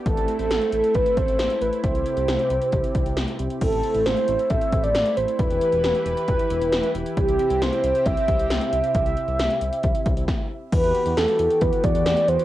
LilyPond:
<<
  \new Staff \with { instrumentName = "Soft synth lead" } { \time 4/4 \key a \dorian \tempo 4 = 135 a'8. a'8. a'8 b'8 c''4 b'8 | c''2. r4 | a'4 c''4 e''8. d''8. c''8 | b'4 b'8 b'2 r8 |
g'4 c''4 e''2 | e''2. r4 | b'4 a'4 b'8 d''4 c''8 | }
  \new Staff \with { instrumentName = "Analog synth pad" } { \time 4/4 \key a \dorian << { <a e'>1 | <c g'>1 | <a e'>1 | <e b'>1 |
<c c' g'>1~ | <c c' g'>2. r4 | <e b g'>1 | } \\ { c'1~ | c'1 | c'1 | g'1 |
r1 | r1 | fis'1 | } >> }
  \new Staff \with { instrumentName = "Analog synth bass" } { \clef bass \time 4/4 \key a \dorian a,,16 a,,16 r16 a,,16 a,,16 r16 a,,16 r16 a,,16 r16 a,,16 a,,16 a,,16 r16 a,,16 r16 | c,16 c,16 r16 c,16 c,16 r16 c,16 r16 c,16 r16 c,16 c,16 c,16 r16 c,16 r16 | a,,16 a,,16 r16 a,,16 a,,16 r16 a,,16 r16 a,,16 r16 a,,16 a,,16 a,,16 r16 a,,16 r16 | e,,16 e,,16 r16 e,,16 e,,16 r16 e,,16 r16 e,,16 r16 e,,16 e,,16 e,,16 r16 e,,16 r16 |
c,16 c,16 r16 c,16 c,16 r16 c,16 r16 c,16 r16 c,16 c,16 c,16 r16 c,16 r16 | c,16 c,16 r16 c,16 c,16 r16 c,16 r16 c,16 r16 c,16 c,16 r4 | e,16 e,16 r16 e,16 e,16 r16 e,16 r16 e,16 r16 e,16 e,16 e,16 r16 e,16 r16 | }
  \new DrumStaff \with { instrumentName = "Drums" } \drummode { \time 4/4 <hh bd>16 hh16 hh16 hh16 <hh sn>16 hh16 hh16 hh16 <hh bd>16 hh16 <hh bd>16 hh16 <hh sn>16 hh16 hh16 hh16 | <hh bd>16 hh16 hh16 hh16 <hh sn>16 hh16 hh16 hh16 <hh bd>16 hh16 <hh bd>16 hh16 <hh sn>16 hh16 hh16 hh16 | <cymc hh bd>16 hh16 hh16 hh16 <hh sn>16 hh16 hh16 hh16 <hh bd>16 hh16 <hh bd>16 hh16 <hh sn>16 hh16 hh16 hh16 | <hh bd>16 hh16 hh16 hh16 <hh sn>16 hh16 hh16 hh16 <hh bd>16 hh16 hh16 hh16 <hh sn>16 hh16 hh16 hh16 |
<hh bd>16 hh16 hh16 hh16 <hh sn>16 hh16 hh16 hh16 <hh bd>16 hh16 <hh bd>16 hh16 <hh sn>16 hh16 hh16 hh16 | <hh bd>16 hh16 hh16 hh16 <hh sn>16 hh16 hh16 hh16 <hh bd>16 hh16 <hh bd>16 hh16 <bd sn>4 | <cymc hh bd>16 hh16 hh16 hh16 <hh sn>16 hh16 hh16 hh16 <hh bd>16 hh16 <hh bd>16 hh16 <hh sn>16 hh16 hh16 hh16 | }
>>